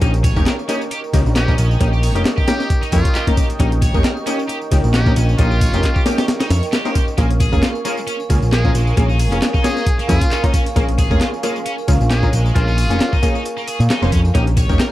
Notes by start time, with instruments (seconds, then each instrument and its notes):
0.01 picked electric bass A#1, synth stab A#3 C#4 D#4 G4, distorted electric guitar D#4, analog synth pad A#4 D#5 G5 C#6, kick, closed hi-hat, tambourine
0.14 closed hi-hat, tambourine
0.24 distorted electric guitar C#5, kick, closed hi-hat, ride, tambourine
0.36 picked electric bass F1, synth stab A#3 C#4 D#4 G4, kick, tambourine
0.46 distorted electric guitar A#4, snare, clap, closed hi-hat, tambourine
0.59 tambourine
0.69 synth stab A#3 C#4 D#4 G4, distorted electric guitar C#4, closed hi-hat, ride, tambourine
0.81 tambourine
0.91 distorted electric guitar G4, closed hi-hat, tambourine
1.04 tambourine
1.13 picked electric bass C#2, synth stab A#3 C#4 D#4 G4, kick, closed hi-hat, ride, tambourine
1.26 picked electric bass A#1, tambourine
1.36 distorted electric guitar C#4, muted trumpet G4, snare, clap, closed hi-hat, tambourine
1.48 synth stab A#3 C#4 D#4 A#4, kick, tambourine
1.58 picked electric bass A#1, closed hi-hat, ride, tambourine
1.71 tambourine
1.80 picked electric bass A#1, synth stab A#3 C#4 D#4 G4, distorted electric guitar D#4, kick, closed hi-hat, tambourine
1.93 distorted electric guitar G4, tambourine
2.03 distorted electric guitar C#5, open hi-hat, ride, tambourine
2.15 picked electric bass F1, synth stab A#3 C#4 D#4 G4, distorted electric guitar G4, closed hi-hat, tambourine
2.25 snare, clap, closed hi-hat, tambourine
2.38 distorted electric guitar G4, kick, tambourine
2.48 synth stab A#3 C#4 D#4 G4, muted trumpet G4, snare, closed hi-hat, ride, tambourine
2.60 distorted electric guitar G4, snare, tambourine
2.70 kick, closed hi-hat, tambourine
2.82 distorted electric guitar D#4, closed hi-hat, tambourine
2.92 picked electric bass F2, synth stab A#3 C#4 D#4 G4, muted trumpet F4, distorted electric guitar C#5, kick, closed hi-hat, ride, tambourine
3.05 kick, closed hi-hat, tambourine
3.15 distorted electric guitar G4, clap, closed hi-hat, tambourine
3.27 synth stab A#3 C#4 D#4 A#4, distorted electric guitar G4, kick, closed hi-hat, tambourine
3.37 distorted electric guitar G4, kick, closed hi-hat, ride, tambourine
3.50 closed hi-hat, tambourine
3.60 picked electric bass A#1, synth stab A#3 C#4 D#4 G4, distorted electric guitar D#4, kick, closed hi-hat, tambourine
3.72 closed hi-hat, tambourine
3.82 distorted electric guitar C#5, kick, closed hi-hat, ride, tambourine
3.94 picked electric bass F1, synth stab A#3 C#4 D#4 G4, kick, tambourine
4.04 distorted electric guitar A#4, snare, clap, closed hi-hat, tambourine
4.17 tambourine
4.26 synth stab A#3 C#4 D#4 G4, distorted electric guitar C#4, closed hi-hat, ride, tambourine
4.39 tambourine
4.49 distorted electric guitar G4, closed hi-hat, tambourine
4.61 tambourine
4.72 picked electric bass C#2, synth stab A#3 C#4 D#4 G4, kick, closed hi-hat, ride, tambourine
4.84 picked electric bass A#1, tambourine
4.94 distorted electric guitar C#4, muted trumpet G4, snare, clap, closed hi-hat, tambourine
5.06 synth stab A#3 C#4 D#4 A#4, kick, tambourine
5.16 picked electric bass A#1, closed hi-hat, ride, tambourine
5.29 tambourine
5.38 picked electric bass A#1, synth stab A#3 C#4 D#4 G4, distorted electric guitar D#4, muted trumpet F4, kick, closed hi-hat, tambourine
5.51 distorted electric guitar G4, tambourine
5.61 distorted electric guitar C#5, kick, closed hi-hat, ride, tambourine
5.73 picked electric bass F1, synth stab A#3 C#4 D#4 G4, distorted electric guitar G4, closed hi-hat, tambourine
5.83 kick, clap, closed hi-hat, tambourine
5.95 distorted electric guitar G4, kick, tambourine
6.06 synth stab A#3 C#4 D#4 G4, snare, closed hi-hat, ride, tambourine
6.18 distorted electric guitar G4, snare, closed hi-hat, tambourine
6.28 snare, closed hi-hat, tambourine
6.40 distorted electric guitar D#4, snare, closed hi-hat, tambourine
6.50 picked electric bass F2, distorted electric guitar C#5, snare, closed hi-hat, ride, tambourine
6.63 closed hi-hat, tambourine
6.73 distorted electric guitar G4, snare, clap, closed hi-hat, tambourine
6.85 synth stab A#3 C#4 D#4 C5, distorted electric guitar G4, snare, tambourine
6.95 distorted electric guitar G4, kick, closed hi-hat, ride, tambourine
7.08 tambourine
7.18 picked electric bass A#1, synth stab A#3 C#4 F4 G#4, distorted electric guitar A#3, analog synth pad F5 G#5, kick, closed hi-hat, tambourine
7.30 closed hi-hat, tambourine
7.40 distorted electric guitar G#4, kick, closed hi-hat, ride, tambourine
7.52 picked electric bass F1, synth stab A#3 C#4 F4 G#4, kick, tambourine
7.63 distorted electric guitar F4, snare, clap, closed hi-hat, tambourine
7.75 tambourine
7.85 distorted electric guitar G#3, synth stab A#3 C#4 F4 G#4, closed hi-hat, ride, tambourine
7.97 tambourine
8.07 distorted electric guitar C#4, closed hi-hat, tambourine
8.20 tambourine
8.30 picked electric bass C#2, synth stab A#3 C#4 F4 G#4, kick, closed hi-hat, ride, tambourine
8.42 picked electric bass A#1, tambourine
8.52 distorted electric guitar G#3, muted trumpet G#4, snare, clap, closed hi-hat, tambourine
8.64 synth stab A#3 C#4 F4 A#4, kick, tambourine
8.74 picked electric bass A#1, closed hi-hat, ride, tambourine
8.87 tambourine
8.97 picked electric bass A#1, distorted electric guitar A#3, synth stab A#3 C#4 F4 G#4, kick, closed hi-hat, tambourine
9.09 distorted electric guitar D#4, tambourine
9.19 distorted electric guitar G#4, open hi-hat, ride, tambourine
9.32 picked electric bass F1, synth stab A#3 C#4 F4 G#4, distorted electric guitar C#4, closed hi-hat, tambourine
9.42 snare, clap, closed hi-hat, tambourine
9.54 distorted electric guitar D#4, kick, tambourine
9.64 synth stab A#3 C#4 F4 G#4, muted trumpet G#4, snare, closed hi-hat, ride, tambourine
9.77 distorted electric guitar D#4, snare, tambourine
9.87 kick, closed hi-hat, tambourine
9.99 distorted electric guitar A#3, closed hi-hat, tambourine
10.08 picked electric bass F2, synth stab A#3 C#4 F4 G#4, muted trumpet F4, distorted electric guitar G#4, kick, closed hi-hat, ride, tambourine
10.21 kick, closed hi-hat, tambourine
10.31 distorted electric guitar D#4, clap, closed hi-hat, tambourine
10.43 synth stab A#3 C#4 F4 A#4, distorted electric guitar D#4, kick, closed hi-hat, tambourine
10.54 distorted electric guitar C#4, kick, closed hi-hat, ride, tambourine
10.66 closed hi-hat, tambourine
10.76 picked electric bass A#1, synth stab A#3 C#4 F4 G#4, distorted electric guitar A#3, kick, closed hi-hat, tambourine
10.89 closed hi-hat, tambourine
10.98 distorted electric guitar G#4, kick, closed hi-hat, ride, tambourine
11.11 picked electric bass F1, synth stab A#3 C#4 F4 G#4, kick, tambourine
11.21 distorted electric guitar F4, snare, clap, closed hi-hat, tambourine
11.33 tambourine
11.43 distorted electric guitar G#3, synth stab A#3 C#4 F4 G#4, closed hi-hat, ride, tambourine
11.56 tambourine
11.66 distorted electric guitar C#4, closed hi-hat, tambourine
11.78 tambourine
11.88 picked electric bass C#2, synth stab A#3 C#4 F4 G#4, kick, closed hi-hat, ride, tambourine
12.00 picked electric bass A#1, tambourine
12.10 distorted electric guitar G#3, muted trumpet G#4, snare, clap, closed hi-hat, tambourine
12.23 synth stab A#3 C#4 F4 A#4, kick, tambourine
12.33 picked electric bass A#1, closed hi-hat, ride, tambourine
12.46 tambourine
12.55 picked electric bass A#1, synth stab A#3 C#4 F4 G#4, distorted electric guitar A#3, muted trumpet F4, kick, closed hi-hat, tambourine
12.68 distorted electric guitar D#4, tambourine
12.77 distorted electric guitar G#4, open hi-hat, ride, tambourine
12.90 picked electric bass F1, synth stab A#3 C#4 F4 G#4, distorted electric guitar C#4, closed hi-hat, tambourine
13.00 snare, clap, closed hi-hat, tambourine
13.12 distorted electric guitar D#4, kick, tambourine
13.22 synth stab A#3 C#4 F4 G#4, kick, closed hi-hat, ride, tambourine
13.35 distorted electric guitar D#4, tambourine
13.45 closed hi-hat, tambourine
13.57 distorted electric guitar A#3, tambourine
13.67 distorted electric guitar G#4, closed hi-hat, ride, tambourine
13.80 picked electric bass A#2, closed hi-hat, tambourine
13.90 distorted electric guitar D#4, snare, clap, closed hi-hat, tambourine
14.02 picked electric bass F1, synth stab A#3 C#4 F4 C5, distorted electric guitar D#4, snare, tambourine
14.12 picked electric bass F2, distorted electric guitar C#4, kick, closed hi-hat, ride, tambourine
14.25 tambourine
14.34 picked electric bass A#1, synth stab A#3 C#4 D#4 G4, distorted electric guitar D#4, analog synth pad A#4 D#5 G5 C#6, kick, closed hi-hat, tambourine
14.47 closed hi-hat, tambourine
14.57 distorted electric guitar C#5, kick, closed hi-hat, ride, tambourine
14.69 picked electric bass F1, synth stab A#3 C#4 D#4 G4, kick, tambourine
14.79 distorted electric guitar A#4, snare, clap, closed hi-hat, tambourine